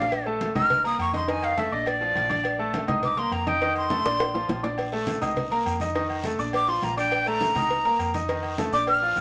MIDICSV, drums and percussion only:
0, 0, Header, 1, 2, 480
1, 0, Start_track
1, 0, Key_signature, -2, "major"
1, 0, Tempo, 291829
1, 192, Time_signature, 4, 2, 24, 8
1, 15144, End_track
2, 0, Start_track
2, 0, Title_t, "Drums"
2, 28, Note_on_c, 9, 66, 107
2, 192, Note_off_c, 9, 66, 0
2, 195, Note_on_c, 9, 68, 104
2, 197, Note_on_c, 9, 56, 104
2, 199, Note_on_c, 9, 63, 35
2, 360, Note_off_c, 9, 68, 0
2, 362, Note_off_c, 9, 56, 0
2, 363, Note_off_c, 9, 63, 0
2, 438, Note_on_c, 9, 63, 35
2, 602, Note_off_c, 9, 63, 0
2, 669, Note_on_c, 9, 68, 71
2, 674, Note_on_c, 9, 63, 96
2, 677, Note_on_c, 9, 56, 73
2, 834, Note_off_c, 9, 68, 0
2, 839, Note_off_c, 9, 63, 0
2, 841, Note_off_c, 9, 56, 0
2, 912, Note_on_c, 9, 63, 31
2, 912, Note_on_c, 9, 64, 77
2, 919, Note_on_c, 9, 56, 73
2, 919, Note_on_c, 9, 68, 97
2, 1077, Note_off_c, 9, 63, 0
2, 1077, Note_off_c, 9, 64, 0
2, 1083, Note_off_c, 9, 56, 0
2, 1083, Note_off_c, 9, 68, 0
2, 1151, Note_on_c, 9, 63, 36
2, 1151, Note_on_c, 9, 64, 74
2, 1156, Note_on_c, 9, 56, 104
2, 1315, Note_off_c, 9, 63, 0
2, 1315, Note_off_c, 9, 64, 0
2, 1320, Note_off_c, 9, 56, 0
2, 1394, Note_on_c, 9, 63, 35
2, 1401, Note_on_c, 9, 56, 73
2, 1558, Note_off_c, 9, 63, 0
2, 1565, Note_off_c, 9, 56, 0
2, 1628, Note_on_c, 9, 63, 35
2, 1633, Note_on_c, 9, 68, 107
2, 1638, Note_on_c, 9, 56, 68
2, 1792, Note_off_c, 9, 63, 0
2, 1797, Note_off_c, 9, 68, 0
2, 1803, Note_off_c, 9, 56, 0
2, 1865, Note_on_c, 9, 63, 85
2, 1878, Note_on_c, 9, 56, 79
2, 2030, Note_off_c, 9, 63, 0
2, 2043, Note_off_c, 9, 56, 0
2, 2110, Note_on_c, 9, 56, 107
2, 2112, Note_on_c, 9, 63, 36
2, 2113, Note_on_c, 9, 68, 76
2, 2275, Note_off_c, 9, 56, 0
2, 2277, Note_off_c, 9, 63, 0
2, 2277, Note_off_c, 9, 68, 0
2, 2343, Note_on_c, 9, 68, 100
2, 2354, Note_on_c, 9, 63, 37
2, 2508, Note_off_c, 9, 68, 0
2, 2519, Note_off_c, 9, 63, 0
2, 2592, Note_on_c, 9, 56, 74
2, 2593, Note_on_c, 9, 63, 91
2, 2756, Note_off_c, 9, 56, 0
2, 2758, Note_off_c, 9, 63, 0
2, 3065, Note_on_c, 9, 68, 100
2, 3070, Note_on_c, 9, 63, 36
2, 3079, Note_on_c, 9, 56, 108
2, 3229, Note_off_c, 9, 68, 0
2, 3234, Note_off_c, 9, 63, 0
2, 3243, Note_off_c, 9, 56, 0
2, 3301, Note_on_c, 9, 63, 38
2, 3465, Note_off_c, 9, 63, 0
2, 3542, Note_on_c, 9, 63, 84
2, 3542, Note_on_c, 9, 68, 81
2, 3562, Note_on_c, 9, 56, 70
2, 3707, Note_off_c, 9, 63, 0
2, 3707, Note_off_c, 9, 68, 0
2, 3727, Note_off_c, 9, 56, 0
2, 3773, Note_on_c, 9, 68, 73
2, 3784, Note_on_c, 9, 63, 77
2, 3793, Note_on_c, 9, 56, 71
2, 3937, Note_off_c, 9, 68, 0
2, 3948, Note_off_c, 9, 63, 0
2, 3957, Note_off_c, 9, 56, 0
2, 4008, Note_on_c, 9, 68, 100
2, 4026, Note_on_c, 9, 63, 37
2, 4027, Note_on_c, 9, 56, 101
2, 4173, Note_off_c, 9, 68, 0
2, 4190, Note_off_c, 9, 63, 0
2, 4191, Note_off_c, 9, 56, 0
2, 4267, Note_on_c, 9, 63, 38
2, 4431, Note_off_c, 9, 63, 0
2, 4497, Note_on_c, 9, 68, 77
2, 4505, Note_on_c, 9, 63, 99
2, 4506, Note_on_c, 9, 56, 77
2, 4661, Note_off_c, 9, 68, 0
2, 4669, Note_off_c, 9, 63, 0
2, 4671, Note_off_c, 9, 56, 0
2, 4738, Note_on_c, 9, 68, 102
2, 4742, Note_on_c, 9, 56, 73
2, 4745, Note_on_c, 9, 63, 34
2, 4745, Note_on_c, 9, 64, 79
2, 4902, Note_off_c, 9, 68, 0
2, 4907, Note_off_c, 9, 56, 0
2, 4910, Note_off_c, 9, 63, 0
2, 4910, Note_off_c, 9, 64, 0
2, 4980, Note_on_c, 9, 56, 110
2, 4982, Note_on_c, 9, 63, 33
2, 4982, Note_on_c, 9, 64, 71
2, 5145, Note_off_c, 9, 56, 0
2, 5147, Note_off_c, 9, 63, 0
2, 5147, Note_off_c, 9, 64, 0
2, 5221, Note_on_c, 9, 56, 73
2, 5229, Note_on_c, 9, 63, 36
2, 5386, Note_off_c, 9, 56, 0
2, 5393, Note_off_c, 9, 63, 0
2, 5456, Note_on_c, 9, 68, 102
2, 5465, Note_on_c, 9, 56, 71
2, 5470, Note_on_c, 9, 63, 36
2, 5621, Note_off_c, 9, 68, 0
2, 5629, Note_off_c, 9, 56, 0
2, 5634, Note_off_c, 9, 63, 0
2, 5706, Note_on_c, 9, 63, 88
2, 5707, Note_on_c, 9, 56, 75
2, 5870, Note_off_c, 9, 63, 0
2, 5871, Note_off_c, 9, 56, 0
2, 5939, Note_on_c, 9, 63, 37
2, 5944, Note_on_c, 9, 68, 72
2, 5949, Note_on_c, 9, 56, 103
2, 6104, Note_off_c, 9, 63, 0
2, 6108, Note_off_c, 9, 68, 0
2, 6113, Note_off_c, 9, 56, 0
2, 6176, Note_on_c, 9, 68, 106
2, 6180, Note_on_c, 9, 63, 36
2, 6341, Note_off_c, 9, 68, 0
2, 6345, Note_off_c, 9, 63, 0
2, 6417, Note_on_c, 9, 63, 94
2, 6434, Note_on_c, 9, 56, 77
2, 6582, Note_off_c, 9, 63, 0
2, 6598, Note_off_c, 9, 56, 0
2, 6672, Note_on_c, 9, 60, 88
2, 6837, Note_off_c, 9, 60, 0
2, 6900, Note_on_c, 9, 63, 35
2, 6901, Note_on_c, 9, 68, 108
2, 6911, Note_on_c, 9, 56, 106
2, 6911, Note_on_c, 9, 60, 104
2, 7064, Note_off_c, 9, 63, 0
2, 7066, Note_off_c, 9, 68, 0
2, 7076, Note_off_c, 9, 56, 0
2, 7076, Note_off_c, 9, 60, 0
2, 7147, Note_on_c, 9, 63, 34
2, 7156, Note_on_c, 9, 61, 97
2, 7312, Note_off_c, 9, 63, 0
2, 7320, Note_off_c, 9, 61, 0
2, 7381, Note_on_c, 9, 68, 86
2, 7386, Note_on_c, 9, 63, 79
2, 7392, Note_on_c, 9, 56, 71
2, 7392, Note_on_c, 9, 61, 103
2, 7546, Note_off_c, 9, 68, 0
2, 7550, Note_off_c, 9, 63, 0
2, 7556, Note_off_c, 9, 56, 0
2, 7556, Note_off_c, 9, 61, 0
2, 7626, Note_on_c, 9, 68, 71
2, 7631, Note_on_c, 9, 56, 72
2, 7631, Note_on_c, 9, 61, 101
2, 7790, Note_off_c, 9, 68, 0
2, 7796, Note_off_c, 9, 56, 0
2, 7796, Note_off_c, 9, 61, 0
2, 7858, Note_on_c, 9, 68, 107
2, 7870, Note_on_c, 9, 63, 36
2, 7872, Note_on_c, 9, 74, 75
2, 7876, Note_on_c, 9, 56, 102
2, 8022, Note_off_c, 9, 68, 0
2, 8035, Note_off_c, 9, 63, 0
2, 8036, Note_off_c, 9, 74, 0
2, 8040, Note_off_c, 9, 56, 0
2, 8106, Note_on_c, 9, 63, 38
2, 8271, Note_off_c, 9, 63, 0
2, 8337, Note_on_c, 9, 63, 91
2, 8344, Note_on_c, 9, 68, 78
2, 8351, Note_on_c, 9, 73, 73
2, 8356, Note_on_c, 9, 56, 76
2, 8502, Note_off_c, 9, 63, 0
2, 8508, Note_off_c, 9, 68, 0
2, 8515, Note_off_c, 9, 73, 0
2, 8520, Note_off_c, 9, 56, 0
2, 8582, Note_on_c, 9, 63, 32
2, 8582, Note_on_c, 9, 64, 75
2, 8587, Note_on_c, 9, 73, 69
2, 8591, Note_on_c, 9, 56, 77
2, 8593, Note_on_c, 9, 68, 104
2, 8746, Note_off_c, 9, 63, 0
2, 8746, Note_off_c, 9, 64, 0
2, 8752, Note_off_c, 9, 73, 0
2, 8755, Note_off_c, 9, 56, 0
2, 8757, Note_off_c, 9, 68, 0
2, 8823, Note_on_c, 9, 63, 35
2, 8823, Note_on_c, 9, 64, 70
2, 8830, Note_on_c, 9, 56, 113
2, 8833, Note_on_c, 9, 74, 77
2, 8988, Note_off_c, 9, 63, 0
2, 8988, Note_off_c, 9, 64, 0
2, 8994, Note_off_c, 9, 56, 0
2, 8998, Note_off_c, 9, 74, 0
2, 9063, Note_on_c, 9, 63, 37
2, 9074, Note_on_c, 9, 56, 72
2, 9228, Note_off_c, 9, 63, 0
2, 9239, Note_off_c, 9, 56, 0
2, 9299, Note_on_c, 9, 63, 36
2, 9309, Note_on_c, 9, 68, 110
2, 9316, Note_on_c, 9, 56, 71
2, 9323, Note_on_c, 9, 73, 70
2, 9464, Note_off_c, 9, 63, 0
2, 9474, Note_off_c, 9, 68, 0
2, 9480, Note_off_c, 9, 56, 0
2, 9488, Note_off_c, 9, 73, 0
2, 9538, Note_on_c, 9, 63, 84
2, 9551, Note_on_c, 9, 73, 75
2, 9558, Note_on_c, 9, 56, 68
2, 9703, Note_off_c, 9, 63, 0
2, 9716, Note_off_c, 9, 73, 0
2, 9723, Note_off_c, 9, 56, 0
2, 9779, Note_on_c, 9, 63, 35
2, 9787, Note_on_c, 9, 68, 70
2, 9794, Note_on_c, 9, 56, 105
2, 9799, Note_on_c, 9, 74, 70
2, 9944, Note_off_c, 9, 63, 0
2, 9952, Note_off_c, 9, 68, 0
2, 9959, Note_off_c, 9, 56, 0
2, 9963, Note_off_c, 9, 74, 0
2, 10016, Note_on_c, 9, 63, 37
2, 10032, Note_on_c, 9, 68, 102
2, 10181, Note_off_c, 9, 63, 0
2, 10197, Note_off_c, 9, 68, 0
2, 10257, Note_on_c, 9, 63, 92
2, 10267, Note_on_c, 9, 73, 72
2, 10281, Note_on_c, 9, 56, 77
2, 10421, Note_off_c, 9, 63, 0
2, 10431, Note_off_c, 9, 73, 0
2, 10445, Note_off_c, 9, 56, 0
2, 10509, Note_on_c, 9, 73, 70
2, 10673, Note_off_c, 9, 73, 0
2, 10742, Note_on_c, 9, 63, 36
2, 10743, Note_on_c, 9, 68, 106
2, 10752, Note_on_c, 9, 74, 71
2, 10758, Note_on_c, 9, 56, 103
2, 10906, Note_off_c, 9, 63, 0
2, 10907, Note_off_c, 9, 68, 0
2, 10916, Note_off_c, 9, 74, 0
2, 10922, Note_off_c, 9, 56, 0
2, 10983, Note_on_c, 9, 63, 36
2, 11148, Note_off_c, 9, 63, 0
2, 11221, Note_on_c, 9, 63, 86
2, 11228, Note_on_c, 9, 73, 67
2, 11230, Note_on_c, 9, 68, 88
2, 11235, Note_on_c, 9, 56, 70
2, 11385, Note_off_c, 9, 63, 0
2, 11393, Note_off_c, 9, 73, 0
2, 11395, Note_off_c, 9, 68, 0
2, 11400, Note_off_c, 9, 56, 0
2, 11473, Note_on_c, 9, 68, 73
2, 11475, Note_on_c, 9, 56, 75
2, 11487, Note_on_c, 9, 73, 70
2, 11637, Note_off_c, 9, 68, 0
2, 11640, Note_off_c, 9, 56, 0
2, 11652, Note_off_c, 9, 73, 0
2, 11701, Note_on_c, 9, 63, 36
2, 11703, Note_on_c, 9, 68, 109
2, 11710, Note_on_c, 9, 56, 105
2, 11719, Note_on_c, 9, 74, 73
2, 11865, Note_off_c, 9, 63, 0
2, 11867, Note_off_c, 9, 68, 0
2, 11875, Note_off_c, 9, 56, 0
2, 11883, Note_off_c, 9, 74, 0
2, 11948, Note_on_c, 9, 63, 37
2, 12113, Note_off_c, 9, 63, 0
2, 12184, Note_on_c, 9, 63, 96
2, 12188, Note_on_c, 9, 68, 73
2, 12197, Note_on_c, 9, 56, 70
2, 12205, Note_on_c, 9, 73, 78
2, 12348, Note_off_c, 9, 63, 0
2, 12352, Note_off_c, 9, 68, 0
2, 12362, Note_off_c, 9, 56, 0
2, 12369, Note_off_c, 9, 73, 0
2, 12418, Note_on_c, 9, 68, 97
2, 12428, Note_on_c, 9, 63, 33
2, 12428, Note_on_c, 9, 64, 78
2, 12429, Note_on_c, 9, 56, 73
2, 12435, Note_on_c, 9, 73, 70
2, 12582, Note_off_c, 9, 68, 0
2, 12593, Note_off_c, 9, 63, 0
2, 12593, Note_off_c, 9, 64, 0
2, 12594, Note_off_c, 9, 56, 0
2, 12600, Note_off_c, 9, 73, 0
2, 12673, Note_on_c, 9, 56, 114
2, 12674, Note_on_c, 9, 74, 76
2, 12676, Note_on_c, 9, 63, 33
2, 12838, Note_off_c, 9, 56, 0
2, 12839, Note_off_c, 9, 74, 0
2, 12840, Note_off_c, 9, 63, 0
2, 12915, Note_on_c, 9, 56, 70
2, 12916, Note_on_c, 9, 63, 34
2, 13079, Note_off_c, 9, 56, 0
2, 13081, Note_off_c, 9, 63, 0
2, 13148, Note_on_c, 9, 68, 112
2, 13149, Note_on_c, 9, 73, 71
2, 13150, Note_on_c, 9, 63, 35
2, 13153, Note_on_c, 9, 56, 73
2, 13312, Note_off_c, 9, 68, 0
2, 13313, Note_off_c, 9, 73, 0
2, 13315, Note_off_c, 9, 63, 0
2, 13318, Note_off_c, 9, 56, 0
2, 13387, Note_on_c, 9, 73, 76
2, 13392, Note_on_c, 9, 56, 77
2, 13393, Note_on_c, 9, 63, 82
2, 13552, Note_off_c, 9, 73, 0
2, 13556, Note_off_c, 9, 56, 0
2, 13558, Note_off_c, 9, 63, 0
2, 13625, Note_on_c, 9, 74, 70
2, 13634, Note_on_c, 9, 56, 111
2, 13634, Note_on_c, 9, 68, 73
2, 13635, Note_on_c, 9, 63, 37
2, 13789, Note_off_c, 9, 74, 0
2, 13799, Note_off_c, 9, 56, 0
2, 13799, Note_off_c, 9, 63, 0
2, 13799, Note_off_c, 9, 68, 0
2, 13863, Note_on_c, 9, 68, 112
2, 13872, Note_on_c, 9, 63, 37
2, 14027, Note_off_c, 9, 68, 0
2, 14036, Note_off_c, 9, 63, 0
2, 14114, Note_on_c, 9, 56, 79
2, 14116, Note_on_c, 9, 63, 96
2, 14116, Note_on_c, 9, 73, 71
2, 14279, Note_off_c, 9, 56, 0
2, 14280, Note_off_c, 9, 63, 0
2, 14280, Note_off_c, 9, 73, 0
2, 14352, Note_on_c, 9, 73, 72
2, 14517, Note_off_c, 9, 73, 0
2, 14590, Note_on_c, 9, 68, 111
2, 14592, Note_on_c, 9, 74, 81
2, 14596, Note_on_c, 9, 63, 36
2, 14600, Note_on_c, 9, 56, 108
2, 14754, Note_off_c, 9, 68, 0
2, 14757, Note_off_c, 9, 74, 0
2, 14761, Note_off_c, 9, 63, 0
2, 14764, Note_off_c, 9, 56, 0
2, 14832, Note_on_c, 9, 63, 37
2, 14996, Note_off_c, 9, 63, 0
2, 15068, Note_on_c, 9, 73, 75
2, 15071, Note_on_c, 9, 68, 84
2, 15078, Note_on_c, 9, 63, 80
2, 15085, Note_on_c, 9, 56, 73
2, 15144, Note_off_c, 9, 56, 0
2, 15144, Note_off_c, 9, 63, 0
2, 15144, Note_off_c, 9, 68, 0
2, 15144, Note_off_c, 9, 73, 0
2, 15144, End_track
0, 0, End_of_file